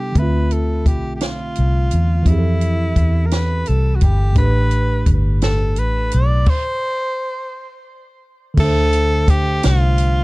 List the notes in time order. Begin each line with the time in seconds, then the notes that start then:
Already playing: C3 G3 B3 D4 E4 G4
0.12 D3 A3, kick, closed hi-hat
0.16 D2 C4 B4 E5
0.22 F4
0.51 A4, closed hi-hat
0.86 B1 G4, kick, closed hi-hat
1.16 G4
1.21 F4, snare, closed hi-hat
1.55 C2, closed hi-hat
1.91 E2, closed hi-hat
2.23 F2 E3 C4, kick, closed hi-hat
2.27 E4 G4
2.32 G#4
2.39 A4
2.61 closed hi-hat
2.96 E2, kick, closed hi-hat
3.26 A#4
3.31 B4, snare, closed hi-hat
3.66 C2 A4, closed hi-hat
3.96 F#4
4.01 G1 G4, kick, closed hi-hat
4.32 A2 A3, kick, closed hi-hat
4.37 A1 D4 G4 B4
4.42 B4
4.71 closed hi-hat
5.06 G1, kick, closed hi-hat
5.42 A4, snare, closed hi-hat
5.76 A1 B4, closed hi-hat
6.12 B1 D5, closed hi-hat
6.46 C5, kick, crash
8.54 D3 A3, kick, crash
8.58 D2 D4 A4 E5
8.64 C5
8.93 closed hi-hat
9.28 G4, kick, closed hi-hat
9.63 C2 F4, snare, closed hi-hat
9.98 closed hi-hat